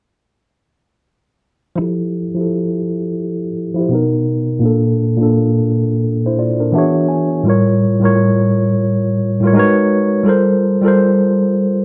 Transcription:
1.76 F3 E4
1.80 G4 A4
2.35 F3 E4 G4
2.41 A4
3.74 F3 E4
3.78 G4 C5
3.89 B2 B3
3.93 D#4 A#4
4.59 A#2 A#3 D4
4.66 A4
5.17 A#2 A#3 D4
5.23 A4
6.26 E4 C5
6.39 F4 D5
6.60 D4 A#4
6.72 E3 B3 D4 E5
6.76 F#4 G#4 C#5
7.08 G#5
7.43 A2 G3 F4
7.48 A#4 C#5
7.99 A2 G3 F4
8.04 A#4 C#5
9.41 A2 G3 F4
9.45 A#4 C#5
9.53 G#3 D#4 F#4 A#4
9.58 B4 C#5
10.23 G3 F4 A4
10.28 A#4 C5
10.81 G3 F4 A4
10.86 A#4 C5

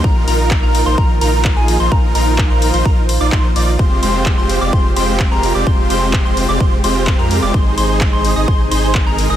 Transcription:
Already playing: D#3 A#3
0.04 A#1 F3 D#4 F4 A#4 A#5, kick
0.28 A#1 D#4 F4 A#4 A#5, open hi-hat
0.51 kick, clap
0.63 A#1 D#4 F4 A#4 A#5
0.75 open hi-hat
0.86 A#1 D#4 F4 C5 C6
0.98 A#1 D#4 F4 A#4 A#5, kick
1.21 A#1 D#4 F4 A#4 A#5, open hi-hat
1.45 kick, clap
1.57 A#1 D#4 F4 G#4 G#5
1.68 open hi-hat
1.80 A#1 D#4 F4 C5 C6
1.91 A#1 D#4 F4 A#4 C5 A#5, kick
2.15 A#1 D#4 F4 A#4 A#5, open hi-hat
2.38 kick, clap
2.50 A#1 D#4 F4 A#4 A#5
2.62 open hi-hat
2.74 A#1 D#4 F4 C5 C6, open hi-hat
2.85 A#1 D#4 F4 A#4 A#5, kick
3.09 open hi-hat
3.21 A#1 D#4 F4 D5 D6
3.32 A#1 D#4 F4 C5 C6, kick, clap
3.56 A#1 D#4 F4 D5 D6, open hi-hat
3.79 F1 C3 G#3 C4 F4 G4 C5 C6, kick
4.03 F1 G#3 C4 F4 G4 C5 C6, open hi-hat
4.26 kick, clap
4.38 F1 G#3 C4 F4 G4 C5 C6
4.49 open hi-hat
4.61 F1 G#3 C4 F4 G4 D5 D6
4.73 F1 G#3 C4 F4 G4 C5 C6, kick
4.96 F1 G#3 C4 F4 G4 C5 C6, open hi-hat
5.20 kick, clap
5.32 F1 G#3 C4 F4 G4 A#4 A#5
5.43 open hi-hat
5.55 F1 G#3 C4 F4 G4 D5 D6
5.67 F1 G#3 C4 F4 G4 C5 C6, kick
5.90 F1 G#3 C4 F4 G4 C5 C6, open hi-hat
6.13 kick, clap
6.25 F1 G#3 C4 F4 G4 C5 C6
6.37 open hi-hat
6.49 F1 G#3 C4 F4 G4 D5 D6
6.60 F1 G#3 C4 F4 G4 C5 C6, kick
6.84 F1 G#3 C4 F4 G4 C5 C6, open hi-hat
7.07 kick, clap
7.19 F2 G#3 C4 F4 G4 A#4 A#5
7.31 open hi-hat
7.42 F1 G#3 C4 F4 G4 D5 D6
7.54 G#1 D#3 D#4 G#4 C5 C6, kick
7.77 G#1 D#4 G#4 C5 C6, open hi-hat
8.01 kick, clap
8.13 G#1 D#4 G#4 C5 C6
8.25 open hi-hat
8.36 G#1 D#4 G#4 D#5 D#6
8.48 G#1 D#4 G#4 C5 C6, kick
8.71 G#1 D#4 G#4 C5 C6, open hi-hat
8.95 kick, clap
9.06 G#1 D#4 G#4 A#4 A#5
9.19 open hi-hat
9.30 G#1 D#4 G#4 D#5 D#6

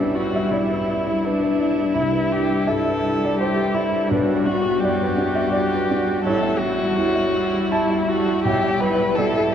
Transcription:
Already playing: B1 G3 D4 E4 B4 D5 E5
0.14 E4 F#4
0.32 G3 E5
0.51 B2 E4 D5
0.70 B4
0.88 E4
1.06 G3
1.25 D4 B4
1.42 B4
1.59 E4
1.78 G3
1.94 C2 G3 E4 E5
2.13 B4
2.32 E4 G4
2.50 G3
2.67 G2 A4 E5
2.88 B4
3.05 E4
3.22 G3 D5
3.40 G4 C5
3.57 B4
3.75 E4
3.93 G3
4.09 B1 B3 D4 F#4 B4 F#5
4.29 B4
4.46 D4 F#4
4.65 G3
4.80 F#2 G4 D5
5.01 B4
5.18 D4
5.35 G3 E5
5.52 D5
5.73 B4
5.91 D4
6.07 G3
6.23 A1 G3 E4 A4 C#5 E5
6.42 E5
6.59 G3 E4 F#4
6.79 G3
6.93 E2 G3
6.98 E4
7.15 E5
7.31 G3 E4
7.53 G3
7.69 G3 E4 A5
7.90 E5
8.07 G3 E4 F#4
8.26 G3
8.43 B1 G3 E4 G4 G5
8.63 E5
8.80 G3 E4 B4
8.99 G3
9.15 B2 G3 E4 A4 D5
9.36 E5
9.50 G3

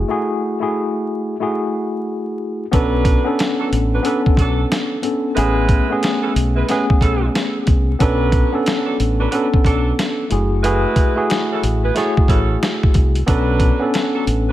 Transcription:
0.08 A3 E4 F#4 G#4
0.60 A3 E4 F#4 G#4
1.40 A3 E4 F#4 G#4
2.71 B1 F#3 B3 C#4 D4 A4 B4, kick, closed hi-hat
3.05 kick, closed hi-hat
3.24 B3 C#4 D4 A4
3.39 snare, closed hi-hat
3.59 F#3 D4 A4
3.72 A1, closed hi-hat
3.94 F#3 D4 B4
4.02 F#3 B3 C#4 D4 A4 B4, closed hi-hat
4.26 muted fingered electric bass stroke, kick
4.37 B1 F#3 D4 A4, kick, closed hi-hat
4.72 snare, closed hi-hat
5.02 B3 C#4 D4 A4, closed hi-hat
5.35 A1 G#3 A3 B3 C#4 E4 G#4 B4, closed hi-hat
5.69 kick, closed hi-hat
5.90 A3 B3 C#4 G#4
6.03 snare, closed hi-hat
6.22 E3 C#4 A4
6.36 B1, closed hi-hat
6.56 G#3 E4 B4
6.69 G#3 A3 B3 C#4 E4 G#4 B4, snare, closed hi-hat
6.90 muted fingered electric bass stroke, kick
7.01 B1 E3 C#4 A4, kick, closed hi-hat
7.35 snare, closed hi-hat
7.67 C2, kick, closed hi-hat
7.99 B1 F#3 B3 C#4 D4 A4 B4, kick, closed hi-hat
8.32 kick, closed hi-hat
8.52 B3 C#4 D4 A4
8.66 snare, closed hi-hat
8.86 F#3 D4 A4
8.99 A1, closed hi-hat
9.19 F#3 D4 B4
9.31 F#3 B3 C#4 D4 A4 B4, closed hi-hat
9.54 muted fingered electric bass stroke, kick
9.65 B1 F#3 D4 A4, kick, closed hi-hat
9.99 snare, closed hi-hat
10.30 F#1 A3 E4 F#4 G#4, closed hi-hat
10.63 G#3 A3 E4 F#4 G#4 B4, closed hi-hat
10.96 kick, closed hi-hat
11.15 A3 E4 F#4 G#4
11.30 snare, closed hi-hat
11.52 E3 C#4 A4
11.63 A1, closed hi-hat
11.84 B3 G#4 B4
11.95 A3 E4 F#4 G#4 C#5, snare, closed hi-hat
12.17 muted fingered electric bass stroke, kick
12.28 A1 E3 C#4 A4, kick, closed hi-hat
12.63 snare, closed hi-hat
12.83 kick
12.94 C2, kick, closed hi-hat
13.15 closed hi-hat
13.26 B1 F#3 B3 C#4 D4 A4 B4, kick, closed hi-hat
13.60 kick, closed hi-hat
13.79 B3 C#4 D4 A4
13.94 snare, closed hi-hat
14.14 F#3 D4 A4
14.27 A1, closed hi-hat
14.49 F#3 D4 B4

